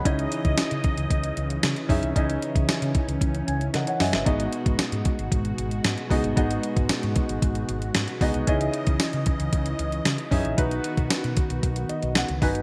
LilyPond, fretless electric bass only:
\new Staff \with { instrumentName = "Fretless electric bass" } { \clef bass \time 4/4 \key cis \dorian \tempo 4 = 114 cis,8 r16 cis,16 r16 cis16 r16 cis,16 cis,8 cis,8 cis16 r16 fis,16 c,16 | cis,8 r16 cis,16 r16 cis16 r16 cis,16 cis,8 cis,8 cis16 r16 fis,16 g,,16 | gis,,8 r16 gis,,16 r16 gis,16 r16 gis,,16 gis,,8 gis,,8 gis,16 r16 cis,16 g,,16 | gis,,8 r16 gis,,16 r16 gis,16 r16 gis,,16 gis,,8 gis,,8 gis,16 r16 cis,16 c,16 |
cis,8 r16 cis,16 r16 cis16 r16 cis,16 cis,8 cis,8 cis16 r16 fis,16 ais,,16 | b,,8 r16 b,,16 r16 b,16 r16 b,,16 b,,8 r16 b,,8 cis,16 g,,8 | }